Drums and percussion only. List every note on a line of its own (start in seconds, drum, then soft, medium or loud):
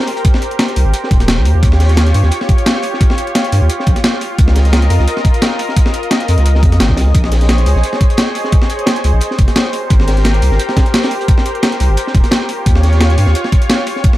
0.08 snare soft
0.08 open hi-hat medium
0.17 closed hi-hat medium
0.25 kick loud
0.25 closed hi-hat medium
0.34 snare medium
0.34 snare soft
0.42 closed hi-hat medium
0.51 closed hi-hat soft
0.59 snare loud
0.59 closed hi-hat medium
0.68 snare soft
0.68 closed hi-hat soft
0.76 closed hi-hat medium
0.76 open hi-hat medium
0.94 closed hi-hat medium
0.94 closed hi-hat loud
1.04 snare soft
1.11 kick loud
1.11 closed hi-hat medium
1.20 snare soft
1.20 closed hi-hat soft
1.28 snare loud
1.28 closed hi-hat medium
1.38 snare soft
1.45 closed hi-hat medium
1.45 open hi-hat medium
1.63 kick loud
1.63 closed hi-hat medium
1.72 snare soft
1.80 snare medium
1.80 closed hi-hat medium
1.80 open hi-hat medium
1.89 snare soft
1.89 closed hi-hat soft
1.97 snare loud
1.97 closed hi-hat medium
2.07 snare medium
2.07 closed hi-hat soft
2.14 closed hi-hat medium
2.14 open hi-hat medium
2.23 snare soft
2.31 closed hi-hat medium
2.41 snare soft
2.49 kick loud
2.49 closed hi-hat medium
2.58 closed hi-hat soft
2.66 snare loud
2.66 closed hi-hat medium
2.75 snare soft
2.82 closed hi-hat medium
2.82 open hi-hat medium
2.94 snare soft
3.01 kick loud
3.01 closed hi-hat medium
3.10 snare medium
3.10 snare soft
3.18 closed hi-hat medium
3.27 closed hi-hat soft
3.35 snare loud
3.35 closed hi-hat loud
3.35 closed hi-hat medium
3.44 snare soft
3.44 closed hi-hat soft
3.52 closed hi-hat medium
3.52 open hi-hat medium
3.70 closed hi-hat medium
3.80 snare medium
3.86 kick loud
3.86 closed hi-hat medium
3.96 snare soft
3.96 closed hi-hat soft
4.04 snare loud
4.04 closed hi-hat medium
4.14 snare soft
4.21 closed hi-hat medium
4.21 open hi-hat medium
4.38 kick loud
4.38 closed hi-hat medium
4.48 snare soft
4.55 snare medium
4.55 closed hi-hat medium
4.55 open hi-hat medium
4.65 snare soft
4.65 closed hi-hat soft
4.73 snare loud
4.73 closed hi-hat loud
4.73 closed hi-hat medium
4.82 snare soft
4.82 closed hi-hat soft
4.90 closed hi-hat medium
4.90 open hi-hat medium
5.00 snare soft
5.08 closed hi-hat medium
5.17 snare soft
5.25 kick loud
5.25 closed hi-hat medium
5.34 closed hi-hat soft
5.42 snare loud
5.42 closed hi-hat medium
5.42 closed hi-hat loud
5.51 snare soft
5.59 closed hi-hat medium
5.59 open hi-hat medium
5.69 snare soft
5.76 kick loud
5.76 closed hi-hat loud
5.76 closed hi-hat medium
5.86 snare medium
5.86 snare soft
5.94 closed hi-hat medium
6.03 closed hi-hat soft
6.11 snare loud
6.11 closed hi-hat medium
6.11 closed hi-hat loud
6.20 snare soft
6.20 closed hi-hat soft
6.28 closed hi-hat medium
6.28 open hi-hat medium
6.38 snare soft
6.38 closed hi-hat soft
6.46 closed hi-hat medium
6.46 closed hi-hat loud
6.55 snare medium
6.63 kick loud
6.63 closed hi-hat medium
6.72 snare soft
6.72 closed hi-hat soft
6.80 snare loud
6.80 closed hi-hat loud
6.80 closed hi-hat medium
6.89 kick medium
6.89 snare soft
6.97 snare loud
6.97 closed hi-hat medium
6.97 open hi-hat medium
7.07 snare soft
7.15 kick loud
7.15 closed hi-hat loud
7.15 closed hi-hat medium
7.24 snare soft
7.32 snare medium
7.32 closed hi-hat medium
7.32 open hi-hat medium
7.41 snare soft
7.41 closed hi-hat soft
7.49 snare loud
7.49 closed hi-hat loud
7.49 closed hi-hat medium
7.58 snare soft
7.58 closed hi-hat soft
7.66 closed hi-hat medium
7.66 open hi-hat medium
7.76 snare soft
7.83 closed hi-hat medium
7.93 snare soft
8.01 kick loud
8.01 closed hi-hat medium
8.10 closed hi-hat soft
8.17 snare loud
8.17 closed hi-hat medium
8.27 snare soft
8.35 closed hi-hat medium
8.35 open hi-hat medium
8.44 snare soft
8.52 kick loud
8.52 closed hi-hat medium
8.62 snare medium
8.62 snare soft
8.70 closed hi-hat medium
8.79 closed hi-hat soft
8.86 snare loud
8.86 closed hi-hat loud
8.86 closed hi-hat medium
8.96 snare soft
8.96 closed hi-hat soft
9.04 closed hi-hat medium
9.04 open hi-hat medium
9.21 closed hi-hat loud
9.21 closed hi-hat medium
9.31 snare medium
9.38 kick loud
9.38 closed hi-hat medium
9.48 snare soft
9.48 closed hi-hat soft
9.56 snare loud
9.56 closed hi-hat loud
9.56 closed hi-hat medium
9.64 snare soft
9.73 closed hi-hat medium
9.73 open hi-hat medium
9.90 kick loud
9.90 closed hi-hat loud
9.90 closed hi-hat medium
10.00 snare soft
10.08 snare medium
10.08 closed hi-hat medium
10.08 open hi-hat medium
10.17 snare soft
10.17 closed hi-hat soft
10.24 snare loud
10.24 closed hi-hat medium
10.24 closed hi-hat loud
10.34 snare soft
10.34 closed hi-hat soft
10.42 closed hi-hat medium
10.42 open hi-hat medium
10.52 snare medium
10.59 closed hi-hat loud
10.59 closed hi-hat medium
10.69 snare soft
10.77 kick loud
10.77 snare loud
10.77 closed hi-hat medium
10.86 snare soft
10.86 closed hi-hat soft
10.94 snare loud
10.94 closed hi-hat medium
11.03 snare loud
11.03 closed hi-hat medium
11.11 snare soft
11.11 open hi-hat medium
11.21 closed hi-hat medium
11.28 kick loud
11.28 closed hi-hat medium
11.38 snare medium
11.38 snare soft
11.46 closed hi-hat medium
11.55 closed hi-hat soft
11.63 snare loud
11.63 closed hi-hat medium
11.72 snare soft
11.72 closed hi-hat soft
11.80 closed hi-hat medium
11.80 open hi-hat medium
11.97 closed hi-hat loud
11.97 closed hi-hat medium
12.07 snare medium
12.15 kick loud
12.15 closed hi-hat medium
12.24 snare soft
12.24 closed hi-hat soft
12.31 snare loud
12.31 closed hi-hat medium
12.41 snare soft
12.49 closed hi-hat medium
12.49 open hi-hat medium
12.66 kick loud
12.66 closed hi-hat medium
12.75 snare soft
12.83 snare medium
12.83 closed hi-hat medium
12.83 open hi-hat medium
12.93 snare soft
12.93 closed hi-hat soft
13.00 snare loud
13.00 closed hi-hat medium
13.10 snare soft
13.10 closed hi-hat soft
13.18 closed hi-hat medium
13.18 open hi-hat medium
13.26 snare soft
13.35 closed hi-hat medium
13.44 snare soft
13.52 kick loud
13.52 closed hi-hat medium
13.61 closed hi-hat soft
13.70 snare loud
13.70 closed hi-hat medium
13.79 snare soft
13.87 closed hi-hat medium
13.87 open hi-hat medium
13.96 snare soft
14.04 kick loud
14.04 closed hi-hat medium
14.13 snare soft